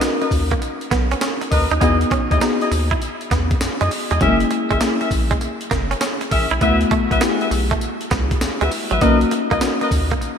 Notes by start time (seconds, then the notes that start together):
Already playing: D#4 F#4 A#4
0.00 B3 C#4 D#4 F#4 A#4, snare, closed hi-hat, tambourine
0.21 A#4 B4 D#5, muted clean electric guitar stroke, closed hi-hat
0.31 D#2, kick, open hi-hat, tambourine
0.51 A#3, kick, closed hi-hat
0.62 muted clean electric guitar stroke, closed hi-hat, tambourine
0.81 closed hi-hat
0.91 B1 B3, kick, snare, closed hi-hat, tambourine
1.11 C#4, closed hi-hat
1.21 C#4, snare, closed hi-hat, tambourine
1.41 muted clean electric guitar stroke, closed hi-hat
1.51 D#2 A#4 B4 D#5, kick, open hi-hat, tambourine
1.71 D#2 D#4, closed hi-hat
1.81 E2 B3 D#4 E4 F#4 G#4 D#5, kick, closed hi-hat, tambourine
2.01 closed hi-hat
2.11 C#4, kick, closed hi-hat
2.31 D#2 E4 G#4 D#5, muted clean electric guitar stroke, kick, closed hi-hat
2.41 B3 D#4 F#4 G#4, snare, closed hi-hat, tambourine
2.61 E4 G#4 D#5, closed hi-hat
2.72 D#2, muted clean electric guitar stroke, open hi-hat, tambourine
2.91 E4, kick, closed hi-hat
3.01 closed hi-hat, tambourine
3.21 closed hi-hat
3.31 E2 B3, kick, snare, closed hi-hat, tambourine
3.51 kick, closed hi-hat
3.61 F#2, snare, closed hi-hat, tambourine
3.81 F#2 G#3 E4 G#4 D#5, closed hi-hat
3.91 muted clean electric guitar stroke, open hi-hat, tambourine
4.11 E2 G#3 E4 G#4 D#5, closed hi-hat
4.21 F#1 F#3 G#3 C#4 E4 G#4 A#4 E5, kick, closed hi-hat, tambourine
4.28 A#3
4.40 closed hi-hat
4.51 muted clean electric guitar stroke, closed hi-hat
4.70 G#1 G#3 G#4 A#4 E5, kick, closed hi-hat
4.81 A#3 C#4 E4 G#4, snare, closed hi-hat, tambourine
5.01 G#4 A#4 E5, muted clean electric guitar stroke, closed hi-hat
5.11 A#1, kick, open hi-hat, tambourine
5.31 G#3, kick, closed hi-hat
5.41 muted clean electric guitar stroke, closed hi-hat, tambourine
5.61 closed hi-hat
5.71 F#1 A#3, kick, snare, closed hi-hat, tambourine
5.91 C#4, closed hi-hat
6.01 C#4, snare, closed hi-hat, tambourine
6.21 muted clean electric guitar stroke, closed hi-hat
6.31 A#1 G#4 A#4 E5, kick, open hi-hat, tambourine
6.51 B1 E4, closed hi-hat
6.61 D2 A3 B3 E4 F#4 B4 E5, kick, closed hi-hat, tambourine
6.81 closed hi-hat
6.91 A3, kick, closed hi-hat
7.11 B1 F#4 B4 E5, muted clean electric guitar stroke, kick, closed hi-hat
7.21 A3 B3 E4 G4, snare, closed hi-hat, tambourine
7.29 G#4
7.41 F#4 B4 E5, closed hi-hat
7.51 B1, muted clean electric guitar stroke, open hi-hat, tambourine
7.71 A3, kick, closed hi-hat
7.81 closed hi-hat, tambourine
8.01 closed hi-hat
8.11 C#2 B3, kick, snare, closed hi-hat, tambourine
8.31 kick, closed hi-hat
8.41 D2, snare, closed hi-hat, tambourine
8.61 D2 G#3 F#4 B4 E5, closed hi-hat
8.71 muted clean electric guitar stroke, open hi-hat, tambourine
8.91 A1 F#3 F#4 B4 E5, closed hi-hat
9.01 B1 A#3 B3 C#4 D#4 F#4 A#4 B4 D#5, kick, closed hi-hat, tambourine
9.21 closed hi-hat
9.31 muted clean electric guitar stroke, closed hi-hat
9.51 C#2 A#3 A#4 B4 D#5, kick, closed hi-hat
9.61 A#3 B3 C#4 D#4 F#4, snare, closed hi-hat, tambourine
9.81 A#4 B4 D#5, muted clean electric guitar stroke, closed hi-hat
9.91 D#2, kick, open hi-hat, tambourine
10.11 A#3, kick, closed hi-hat
10.21 muted clean electric guitar stroke, closed hi-hat, tambourine